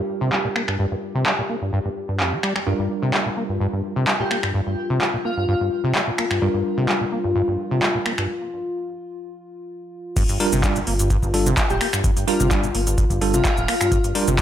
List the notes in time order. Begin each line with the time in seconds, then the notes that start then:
Already playing: G3 D4 F4 G4 A#4
0.21 C3
0.32 G3, clap
0.44 A#2
0.56 A#3, finger snap
0.68 G2, finger snap
0.79 G2
0.92 G2
1.15 C3
1.26 G3, clap
1.38 A#2
1.49 A#3
1.62 G2
1.73 G2
1.85 G2
2.09 G2
2.20 F2, clap
2.32 G3
2.43 G3, finger snap
2.56 G3, finger snap
2.67 G2 G3 D4 F4 A#4
2.79 G2
3.02 C3
3.14 G3, clap
3.26 A#2
3.37 A#3
3.49 G2
3.60 G2
3.73 G2
3.96 C3
4.07 G3, clap
4.20 A#2 G4
4.31 A#3 G4, finger snap
4.43 G2, finger snap
4.54 G2
4.67 G2
4.90 C3
5.01 G3, clap
5.14 A#2
5.25 A#3 F4
5.37 G2 F4
5.48 G2 F4
5.61 G2
5.84 C3
5.95 G3, clap
6.07 A#2
6.18 A#3, finger snap
6.31 G2, finger snap
6.42 G2 G3 D4 F4 A#4
6.54 G2
6.78 C3
6.89 G3, clap
7.01 A#2
7.12 A#3
7.24 G2
7.35 G2
7.48 G2
7.71 C3
7.82 G3, clap
7.95 A#2
8.06 A#3, finger snap
8.18 G2, finger snap
10.17 G1 G2 F4, kick, closed hi-hat, crash, shaker
10.29 G2, closed hi-hat, shaker
10.40 G3 D4 F4 A#4, open hi-hat
10.52 G1 C3, closed hi-hat, shaker
10.63 G3 D4 F4 D5, kick, clap, closed hi-hat, shaker
10.76 A#2, closed hi-hat, shaker
10.87 G1 A#3, open hi-hat
10.99 G2, closed hi-hat, shaker
11.10 G2, kick, closed hi-hat, shaker
11.23 G1 G2, kick, shaker
11.34 G3 D4 F4 A4, open hi-hat
11.46 C3, closed hi-hat, shaker
11.57 G3, kick, clap, closed hi-hat, shaker
11.70 D1 A#2 G4, shaker
11.81 A#3 G4, finger snap, open hi-hat
11.93 G2, finger snap, shaker
12.04 G1 G2, kick, closed hi-hat, shaker
12.17 G2, closed hi-hat, shaker
12.28 G3 D4 F4 A#4, open hi-hat
12.40 G1 C3 F4, closed hi-hat, shaker
12.51 G3 D4 F4 D5, kick, clap, closed hi-hat, shaker
12.63 A#2, closed hi-hat, shaker
12.74 G1 A#3, open hi-hat
12.87 G2, closed hi-hat, shaker
12.98 G2, kick, closed hi-hat, shaker
13.10 G1 G2, kick, closed hi-hat, shaker
13.21 G3 D4 F4 A4, open hi-hat
13.34 C3 F4, closed hi-hat, shaker
13.45 G3, kick, clap, closed hi-hat, shaker
13.57 D1 A#2, shaker
13.68 A#3, finger snap, open hi-hat
13.81 G2, finger snap, shaker
13.92 G1 G2, kick, closed hi-hat, shaker
14.04 G2, closed hi-hat, shaker
14.15 G3 D4 F4 A#4, open hi-hat
14.27 G1 C3, closed hi-hat, shaker